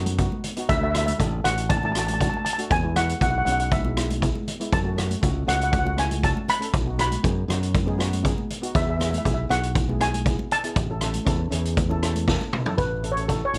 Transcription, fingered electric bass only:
0.00 0.27 F#2 medium
0.69 1.12 D2 loud
1.20 1.41 A1 loud
1.44 2.29 A1 medium
2.70 3.13 E2 loud
3.21 3.42 B1 medium
3.46 4.31 B1 medium
4.72 5.14 F#2 medium
5.23 5.44 C#2 loud
5.48 6.32 C#2 medium
6.74 7.16 B1 medium
7.24 7.45 F#2 loud
7.48 8.33 F#2 medium
8.75 9.17 E2 loud
9.25 9.46 B1 loud
9.49 10.34 B1 medium
10.76 11.18 A1 medium
11.26 11.48 E2 medium
11.51 12.36 E2 medium
12.78 13.42 A1 medium
13.54 13.58 A1 medium

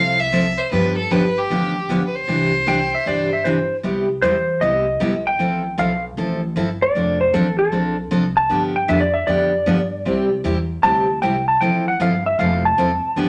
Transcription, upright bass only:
0.00 0.56 C2 medium
0.72 1.03 G2 medium
1.11 1.44 G1 medium
1.50 1.83 A1 medium
1.89 2.22 B1 medium
2.28 2.90 C2 medium
3.06 3.68 G1 medium
3.84 4.21 C2 medium
4.22 4.60 E2 medium
4.61 4.99 C2 medium
5.01 5.38 B1 medium
5.39 5.77 A1 medium
5.78 6.16 B1 loud
6.17 6.55 A1 medium
6.56 6.94 G1 medium
6.95 7.33 F1 medium
7.33 7.71 A1 medium
7.72 8.10 B1 medium
8.11 8.49 C2 medium
8.50 8.88 G2 medium
8.89 9.27 F2 medium
9.27 9.65 F2 medium
9.66 10.04 G2 medium
10.06 10.43 C2 medium
10.44 10.82 E2 medium
10.84 11.21 D2 medium
11.22 11.60 C2 medium
11.61 11.99 A1 medium
11.99 12.37 G1 medium
12.38 12.76 F1 medium
13.04 muted upright bass stroke soft
13.16 13.29 G1 medium

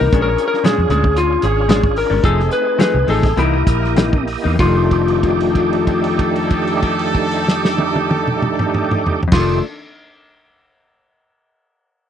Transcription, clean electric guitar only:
0.00 0.13 E3 soft
0.00 0.13 A#3 medium
0.00 0.12 D#4 medium
0.12 0.28 A#2 medium
0.12 0.29 G#3 medium
0.12 0.29 C#4 medium
0.12 0.29 D4 medium
0.64 0.80 A#2 medium
0.64 0.80 G#3 medium
0.64 0.81 C#4 medium
0.64 0.81 D4 medium
0.89 1.06 A#2 medium
0.89 1.06 G#3 medium
0.89 1.07 C#4 medium
0.89 1.07 D4 medium
1.69 1.85 A#2 medium
1.69 1.86 G#3 medium
1.69 1.86 C#4 medium
1.69 1.86 D4 medium
2.10 2.23 G#3 soft
2.10 2.23 C#4 medium
2.10 2.23 D4 medium
2.23 2.40 F3 medium
2.23 2.40 A3 medium
2.23 2.41 D#4 medium
2.23 2.41 G#4 medium
2.79 2.96 F3 medium
2.79 2.97 A3 medium
2.79 2.97 D#4 medium
2.79 2.97 G#4 medium
3.07 3.25 F3 medium
3.07 3.26 A3 medium
3.07 3.26 D#4 medium
3.07 3.26 G#4 medium
3.37 3.55 C3 medium
3.37 3.55 E3 medium
3.37 3.56 A#3 medium
3.37 3.56 D#4 medium
3.97 4.16 C3 medium
3.97 4.16 E3 medium
3.97 4.16 A#3 medium
3.97 4.16 D#4 medium
4.44 4.60 E3 soft
4.44 4.59 A#3 medium
4.44 4.59 D#4 medium
4.55 9.23 F2 medium
4.61 9.26 D#3 medium
4.65 9.29 A3 medium
9.28 9.59 F2 medium
9.33 9.62 D#3 medium
9.38 9.64 A3 medium
9.42 9.66 D4 medium

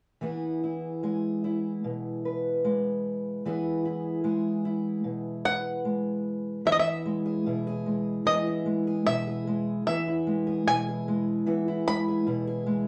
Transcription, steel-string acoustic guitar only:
0.22 3.45 E3 medium
0.22 3.45 B3 soft
0.22 0.63 E4 soft
0.22 1.03 G#4 medium
0.64 1.44 E4 soft
1.03 2.64 G#3 medium
1.03 2.25 G#4 soft
1.44 3.46 E4 soft
1.84 3.40 B2 medium
2.25 3.47 B4 soft
2.64 4.23 G#3 medium
3.45 6.61 E3 medium
3.45 6.65 B3 medium
3.45 3.84 E4 soft
3.45 4.23 G#4 medium
3.85 4.64 E4 soft
4.24 5.84 G#3 medium
4.24 5.44 G#4 soft
4.65 6.61 E4 soft
5.04 6.60 B2 medium
5.45 6.60 B4 soft
5.85 6.60 G#3 soft
6.65 8.25 E3 medium
6.65 8.26 B3 medium
6.86 7.46 E4 soft
7.05 7.86 G#3 medium
7.25 7.67 G#4 medium
7.46 8.26 B2 medium
7.46 8.45 E4 medium
7.67 8.86 G#4 medium
7.86 8.65 G#3 medium
8.26 9.81 E3 medium
8.26 9.87 B3 medium
8.47 9.06 E4 soft
8.66 9.46 G#3 soft
8.87 9.26 G#4 medium
9.07 9.82 B2 medium
9.07 9.82 E4 medium
9.27 10.46 G#4 medium
9.47 9.82 G#3 medium
9.87 11.45 E3 medium
9.87 11.46 B3 medium
10.07 10.66 E4 soft
10.27 11.06 G#3 medium
10.47 10.87 G#4 medium
10.67 11.47 B2 medium
10.67 11.67 E4 medium
10.88 12.07 G#4 medium
11.08 11.86 G#3 medium
11.46 12.88 E3 medium
11.46 12.88 B3 medium
11.68 12.26 E4 medium
11.87 12.65 G#3 medium
12.08 12.46 G#4 medium
12.27 12.88 B2 medium
12.27 12.88 E4 medium
12.47 12.88 G#4 medium
12.66 12.88 G#3 medium

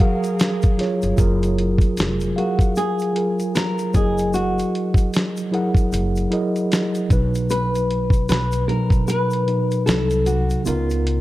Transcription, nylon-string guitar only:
0.00 0.75 F#4 medium
2.38 2.77 F#4 medium
2.77 3.55 G#4 medium
3.55 3.94 A#4 loud
3.95 4.34 G#4 medium
4.34 5.09 F#4 medium
7.50 8.25 B4 loud
8.29 8.68 B4 medium
8.68 9.07 A#4 medium
9.08 9.86 B4 loud
9.86 10.27 A4 medium
10.26 10.65 F#4 medium
10.66 11.21 F4 medium

